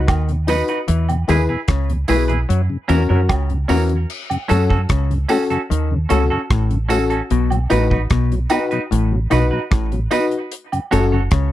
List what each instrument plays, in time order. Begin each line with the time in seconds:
0.08 fingered electric bass D#2, clav D#3, kick, cross-stick, closed hi-hat, high woodblock
0.29 tonewheel organ B2, closed hi-hat
0.47 tonewheel organ F#3 B3 D#4, upright piano D#4 F#4 B4, clean electric guitar D#4 F#4 B4, closed hi-hat, tambourine
0.68 clean electric guitar D#4 F#4 B4, upright piano F#4 B4, closed hi-hat
0.88 fingered electric bass E2, clav E3, closed hi-hat
1.09 tonewheel organ E2 B2, closed hi-hat, high woodblock
1.28 fingered electric bass D#2, clav D#3, tonewheel organ G#3 B3 E4, upright piano E4 G#4 B4, clean electric guitar E4 G#4 B4, closed hi-hat, tambourine
1.49 tonewheel organ E2 B2, clean electric guitar E4 G#4 B4
1.68 fingered electric bass C#2, clav C#3, kick, cross-stick, closed hi-hat
1.89 tonewheel organ E2 B2, closed hi-hat
2.08 fingered electric bass B1, clav B2, tonewheel organ G#3 B3 E4, upright piano E4 G#4 B4, clean electric guitar E4 G#4 B4, open hi-hat, tambourine
2.28 tonewheel organ E2 B2, clean electric guitar E4 G#4 B4, closed hi-hat
2.49 fingered electric bass F#2, clav F#3, closed hi-hat
2.70 tonewheel organ F#2 C#3
2.88 fingered electric bass E2, clav E3, tonewheel organ A#3 C#4 F#4, clean electric guitar C#4 F#4 A#4, upright piano C#4 F#4 A#4, closed hi-hat, tambourine
3.09 tonewheel organ F#2 C#3, fingered electric bass F#2, clav F#3, upright piano C#4 F#4 A#4, clean electric guitar C#4 F#4 A#4
3.29 fingered electric bass C#2, clav C#3, kick, cross-stick, closed hi-hat, high woodblock
3.50 tonewheel organ F#2 C#3, closed hi-hat
3.68 fingered electric bass E2, clav E3, tonewheel organ A#3 C#4 F#4, clean electric guitar C#4 F#4 A#4, upright piano C#4 F#4 A#4, open hi-hat, tambourine
3.89 closed hi-hat
4.10 crash
4.30 tonewheel organ F#2 C#3, closed hi-hat, high woodblock
4.48 fingered electric bass F#2, clav F#3, tonewheel organ A3 C#4 F#4, clean electric guitar C#4 F#4 A4, upright piano C#4 F#4 A4, closed hi-hat, tambourine
4.70 tonewheel organ F#2 C#3, clean electric guitar C#4 F#4 A4, kick
4.89 fingered electric bass C#2, clav C#3, kick, cross-stick, closed hi-hat
5.10 tonewheel organ F#2 C#3, closed hi-hat
5.29 tonewheel organ A3 C#4 F#4, clean electric guitar C#4 F#4 A4, upright piano C#4 F#4 A4, open hi-hat, tambourine, high woodblock
5.50 tonewheel organ F#2 C#3, clean electric guitar C#4 F#4 A4, closed hi-hat
5.70 fingered electric bass D#2, clav D#3, closed hi-hat
5.91 tonewheel organ F#2 C#3
6.09 fingered electric bass C#2, clav C#3, tonewheel organ A3 C#4 F#4, clean electric guitar C#4 F#4 A4, upright piano C#4 F#4 A4, closed hi-hat, tambourine
6.30 tonewheel organ F#2 C#3, clean electric guitar C#4 F#4 A4
6.50 fingered electric bass A1, clav A2, kick, cross-stick, closed hi-hat
6.70 tonewheel organ F#2 C#3, closed hi-hat
6.89 tonewheel organ A3 C#4 F#4, clean electric guitar C#4 F#4 A4, upright piano C#4 F#4 A4, closed hi-hat, tambourine
7.10 clean electric guitar C#4 F#4 A4, closed hi-hat
7.30 fingered electric bass B1, clav B2, closed hi-hat
7.50 tonewheel organ B2 F#3, closed hi-hat, high woodblock
7.70 fingered electric bass A1, clav A2, tonewheel organ B3 D#4 F#4, upright piano D#4 F#4 B4, clean electric guitar D#4 F#4 B4, closed hi-hat, tambourine
7.90 tonewheel organ B2 F#3, clean electric guitar D#4 F#4 B4, kick
8.10 fingered electric bass B1, clav B2, kick, cross-stick, closed hi-hat
8.32 tonewheel organ B2 F#3, closed hi-hat
8.50 tonewheel organ B3 D#4 F#4, clean electric guitar D#4 F#4 B4, upright piano D#4 F#4 B4, closed hi-hat, tambourine, high woodblock
8.71 tonewheel organ B2 F#3, clean electric guitar D#4 F#4 B4, closed hi-hat
8.91 fingered electric bass A1, clav A2, closed hi-hat
9.12 tonewheel organ B2 F#3
9.30 fingered electric bass B1, clav B2, tonewheel organ B3 D#4 F#4, upright piano D#4 F#4 B4, clean electric guitar D#4 F#4 B4, closed hi-hat, tambourine
9.51 tonewheel organ B2 F#3, clean electric guitar D#4 F#4 B4
9.71 fingered electric bass A1, clav A2, kick, cross-stick, closed hi-hat
9.92 tonewheel organ B2 F#3, closed hi-hat
10.11 tonewheel organ B3 D#4 F#4, upright piano D#4 F#4 B4, clean electric guitar D#4 F#4 B4, closed hi-hat, tambourine
10.31 closed hi-hat
10.51 closed hi-hat
10.72 tonewheel organ F#2 C#3, closed hi-hat, high woodblock
10.91 fingered electric bass F#1, clav F#2, tonewheel organ A3 C#4 F#4, upright piano C#4 F#4 A4, clean electric guitar F#4 A4 C#5, closed hi-hat, tambourine
11.12 tonewheel organ F#2 C#3, clean electric guitar F#4 A4 C#5
11.31 fingered electric bass C#2, clav C#3, kick, cross-stick, closed hi-hat